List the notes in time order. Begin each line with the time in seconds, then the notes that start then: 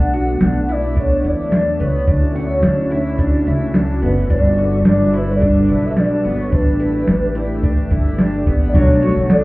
Already playing: B1 A3 B3 D4 F#5
0.14 F#4, closed hi-hat
0.41 B1 D4 F#5, snare, closed hi-hat
0.68 E4 D5, closed hi-hat
0.96 D4 C#5, kick, closed hi-hat
1.24 E2 E4 D5, closed hi-hat
1.52 D4 D5, snare, closed hi-hat
1.80 C#2 B3 C#5, closed hi-hat
2.07 D2 C#4 D4 E4 F#4 C#5, kick, closed hi-hat
2.35 F#4, closed hi-hat
2.63 D2 D4, snare, closed hi-hat
2.90 E4, closed hi-hat
3.18 D4, kick, closed hi-hat
3.46 C#2 E4, closed hi-hat
3.74 D4, snare, closed hi-hat
4.02 F#1 B3 B4, closed hi-hat
4.30 G1 G3 D4 A4 B4 D5, kick, closed hi-hat
4.58 F#4, closed hi-hat
4.85 G1 D4, snare, closed hi-hat
4.89 D5
5.13 E4 B4, closed hi-hat
5.30 D5
5.41 D4, kick, closed hi-hat
5.69 B1 E4, closed hi-hat
5.86 E5
5.97 D4 D5, snare, closed hi-hat
6.25 G1 B3, closed hi-hat
6.40 C#5
6.52 A1 A3 D4 G4 B4, kick, closed hi-hat
6.80 E4, closed hi-hat
7.08 A1 D4, snare, closed hi-hat
7.35 E4, closed hi-hat
7.63 D4, kick, closed hi-hat
7.91 G1 E4, kick, closed hi-hat
8.19 D4, snare, closed hi-hat
8.46 A1 B3, kick, closed hi-hat
8.69 D5
8.73 B1 B2 F#3 A3 D4 F#4 C#5, kick, crash, ride
9.01 D4 F#4 C#5
9.06 A3
9.16 B1
9.30 D4 A4 D5, snare, ride, tambourine